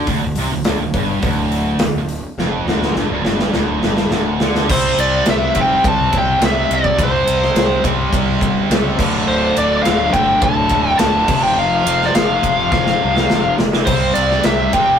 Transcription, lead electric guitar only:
4.71 C5
5.00 D5
5.30 E5
5.61 G5
5.88 A5
6.18 G5
6.45 E5
6.75 D5
7.03 C5
9.28 C5
9.57 D5
9.77 D5
9.83 F5
10.13 G5
10.44 A5
10.99 A5
11.43 G5
11.58 F5
12.05 D5
12.15 F5
12.72 F5
13.85 C5
14.14 D5
14.46 E5
14.73 G5

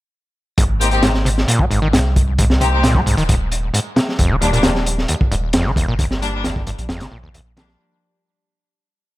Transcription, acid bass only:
0.58 G#2
1.03 G#2
1.25 C3
1.48 A#2
1.59 G#3
1.70 G#2
1.82 D#3
1.93 G#2
2.38 G#2
2.61 C3
2.83 A#2
2.95 G#3
3.06 G#2
3.17 D#3
3.29 G#2
3.74 G#2
3.96 C3
4.19 F2
4.31 D#3
4.42 D#2
4.53 A#2
4.64 D#2
5.09 D#2
5.32 G2
5.54 F2
5.66 D#3
5.77 D#2
5.88 A#2
5.99 D#2
6.44 D#2
6.67 G2
6.89 F2
7.01 D#3
7.12 A#2
7.23 D#2
7.34 D#2
7.57 D#3

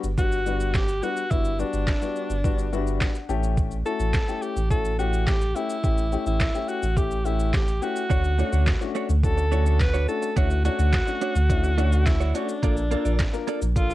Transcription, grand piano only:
0.18 G3 B3 D4 F#4
0.46 G3 B3 D4 F#4
1.03 G3 B3 D4 F#4
1.31 G3 B3 D4 F#4
1.59 G3 B3 D4 F#4
2.02 G3 B3 D4 F#4
2.44 G3 B3 D4 F#4
2.72 G3 B3 D4 F#4 E5
3.01 F#5
3.29 A3 C#4 E4 G4 A5
3.85 A3 C#4 E4 F#4
4.28 A3 C#4 E4 G4
4.70 A3 C#4 E4 F#4
4.99 A3 C#4 E4 G4
5.55 A3 C#4 E4 G4
5.84 A3 C#4 E4 G4
6.12 A3 C#4 E4 G4
6.55 A3 C#4 E4 G4
6.97 A3 C#4 E4 G4
7.25 A3 C#4 E4 G4
7.82 A3 C#4 E4 G4
8.10 A3 C#4 D4 F#4
8.38 A3 C#4 D4 F#4
8.81 A3 C#4 D4 F#4
9.23 A3 C#4 D4 F#4
9.52 A3 C#4 D4 F#4
10.08 A3 C#4 D4 F#4
10.36 A3 C#4 D4 E4
10.65 A3 C#4 D4 F#4
11.07 A3 C#4 D4 F#4
11.50 A3 C#4 D4 E4
11.78 A3 C#4 D4 F#4
12.34 A3 C#4 D4 F#4
12.63 A#3 D4 F4 A4
12.91 A#3 D4 F4 A4
13.33 A#3 D4 F4 A#4
13.76 A#3 D4 F4 A4

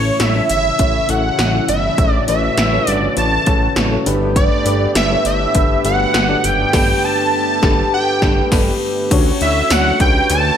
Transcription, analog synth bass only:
Already playing: A1
0.20 A1
0.50 G1
0.79 A1
1.09 A1
1.39 A1
1.69 G1
1.98 A1
2.28 A1
2.58 A1
2.88 G1
3.17 A1
3.47 A1
3.76 A1
4.06 G1
4.66 G1
4.95 G1
5.25 G1
5.55 G1
5.85 G1
6.14 G1
6.44 F#1
6.74 G1
7.63 G1
8.22 G1
8.52 G1
9.11 D2
9.41 D2
9.71 D2
10.00 C#2
10.30 D2

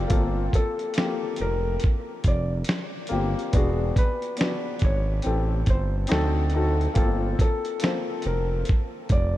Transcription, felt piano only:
0.55 A4
1.41 A#4
2.28 D5
3.98 B4
4.84 C#5
5.70 C5
7.41 A4
8.27 A#4
9.12 D5

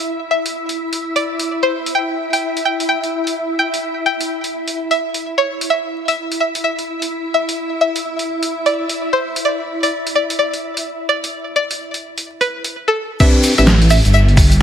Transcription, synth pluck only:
Already playing: E5
0.31 E5
1.16 D5
1.63 C5
1.95 G5
2.33 G5
2.65 G5
2.89 G5
3.59 G5
4.06 G5
4.91 E5
5.38 C#5
5.70 E5
6.08 E5
6.40 E5
6.64 E5
7.34 E5
7.81 E5
8.66 D5
9.13 C5
9.45 D5
9.83 D5
10.15 D5
10.39 D5
11.09 D5
11.56 D5
12.41 B4
12.88 A4
13.20 E5
13.58 E5
13.90 E5
14.14 E5

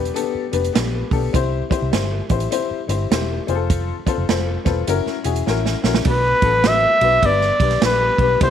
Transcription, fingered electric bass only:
0.35 muted fingered electric bass stroke
0.53 F1
0.75 A#1
1.11 B1
1.34 C2
1.82 C2
1.93 G1
2.30 A1
2.71 muted fingered electric bass stroke
2.89 G1
3.11 E1
3.48 F1
4.18 F1
4.29 F1
4.66 E1
4.88 F#1
5.06 muted fingered electric bass stroke
5.25 E1
5.47 A1
5.84 A#1
6.05 B1
6.42 A1
7.01 B1
7.23 G1
7.60 B1
7.82 A#1
8.19 B1
8.41 C2

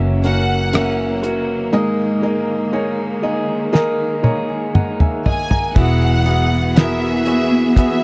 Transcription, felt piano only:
Already playing: A#3 C#4 F#4 C#5 D#5 E5
0.24 A#3 C#4 F#4 A#4
0.73 A#3 C#4 F#4 E5
1.23 A#3 C#4 F#4 C#5
1.73 G#2 A#3 D#4 G#4 D#5
2.22 A#3 D#4 G#4 D#5
2.72 A#3 D#4 G#4 C#5
3.22 A#3 D#4 G#4 D#5
3.73 A#3 D#4 G#4 A#4
4.23 A#3 D#4 G#4 C#5 A#5
4.49 G#5
4.74 F#5
5.00 E5 G#5
5.26 D#5
5.50 A#5
5.75 E3 B3 F#4 G#4 E5
6.25 B3 F#4 G#4 E5
6.76 B3 F#4 G#4 A#4
7.26 B3 F#4 G#4 E5
7.76 B3 F#4 G#4 E5

